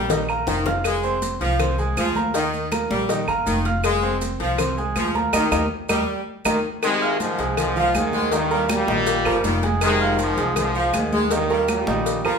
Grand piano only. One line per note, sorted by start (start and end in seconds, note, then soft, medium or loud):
0.10 0.25 D#3 medium
0.10 0.26 D#4 medium
0.10 0.26 D#5 medium
0.29 0.59 A#3 medium
0.29 0.60 A#4 medium
0.29 0.60 A#5 medium
0.66 0.97 F4 medium
0.66 0.97 F5 medium
0.66 0.97 F6 medium
1.04 1.34 C4 medium
1.04 1.34 C5 medium
1.04 1.35 C6 medium
1.41 1.56 F3 medium
1.41 1.56 F4 medium
1.41 1.57 F5 medium
1.60 1.75 C4 medium
1.60 1.75 C5 medium
1.60 1.75 C6 medium
1.79 2.09 G#3 medium
1.79 2.09 G#4 medium
1.79 2.10 G#5 medium
2.16 2.31 A#3 medium
2.16 2.31 A#4 medium
2.16 2.31 A#5 medium
2.35 2.65 D#3 medium
2.35 2.65 D#4 medium
2.35 2.65 D#5 medium
2.72 3.02 A#3 medium
2.72 3.03 A#4 medium
2.72 3.03 A#5 medium
3.09 3.24 D#3 medium
3.09 3.25 D#4 medium
3.09 3.25 D#5 medium
3.28 3.58 A#3 medium
3.28 3.59 A#4 medium
3.28 3.59 A#5 medium
3.65 3.96 F4 medium
3.65 3.96 F5 medium
3.65 3.96 F6 medium
4.03 4.33 C4 medium
4.03 4.33 C5 medium
4.03 4.34 C6 medium
4.40 4.55 F3 medium
4.40 4.55 F4 medium
4.40 4.56 F5 medium
4.59 4.74 C4 medium
4.59 4.74 C5 medium
4.59 4.74 C6 medium
4.78 5.08 G#3 medium
4.78 5.08 G#4 medium
4.78 5.08 G#5 medium
5.15 5.30 A#3 medium
5.15 5.30 A#4 medium
5.15 5.30 A#5 medium
5.33 5.45 G4 loud
5.33 5.45 A#4 loud
5.33 5.45 D#5 loud
5.52 5.64 G4 loud
5.52 5.64 A#4 loud
5.52 5.64 D#5 loud
5.89 6.01 G4 loud
5.89 6.01 A#4 medium
5.89 6.01 D#5 medium
6.46 6.57 G4 medium
6.46 6.58 A#4 loud
6.46 6.57 D#5 medium
7.01 7.32 F4 medium
7.01 7.32 F5 medium
7.01 7.32 F6 medium
7.39 7.69 G#3 medium
7.39 7.69 G#4 medium
7.39 7.70 G#5 medium
7.76 7.91 F3 medium
7.76 7.92 F4 loud
7.76 7.92 F5 loud
7.95 8.25 G#3 medium
7.95 8.26 G#4 medium
7.95 8.26 G#5 medium
8.32 8.47 D#3 medium
8.32 8.48 D#4 medium
8.32 8.48 D#5 medium
8.51 8.81 A#3 medium
8.51 8.82 A#4 medium
8.51 8.82 A#5 medium
8.88 9.19 D#3 medium
8.88 9.19 D#4 medium
8.88 9.19 D#5 medium
9.26 9.56 A#3 medium
9.26 9.57 A#4 medium
9.26 9.57 A#5 medium
9.63 9.94 G#3 medium
9.63 9.94 G#4 medium
9.63 9.94 G#5 medium
10.01 10.31 F4 medium
10.01 10.31 F5 medium
10.01 10.31 F6 medium
10.38 10.68 G#3 medium
10.38 10.69 G#4 medium
10.38 10.69 G#5 medium
10.75 10.90 F3 loud
10.75 10.91 F4 loud
10.75 10.91 F5 loud
10.94 11.24 G#3 medium
10.94 11.25 G#4 medium
10.94 11.25 G#5 medium
11.31 11.47 D#3 medium
11.31 11.47 D#4 loud
11.31 11.47 D#5 medium
11.50 11.81 A#3 medium
11.50 11.81 A#4 medium
11.50 11.81 A#5 medium
11.87 12.18 D#3 loud
11.87 12.18 D#4 medium
11.87 12.18 D#5 medium
12.25 12.38 A#3 medium
12.25 12.38 A#4 medium
12.25 12.38 A#5 medium